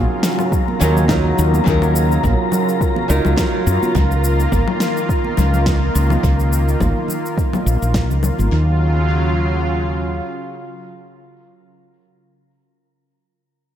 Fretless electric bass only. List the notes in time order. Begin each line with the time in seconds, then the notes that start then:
0.81 D#2
1.39 D#2
1.67 D#2
2.24 A#1
3.10 C#2
3.25 C#2
3.67 F#2
3.95 C#2
4.52 G#1
5.38 C#2
5.95 C#2
6.23 C#2
6.81 G#1
7.66 A#1
7.82 A#1
8.11 C#2
8.39 G#1
8.52 D#2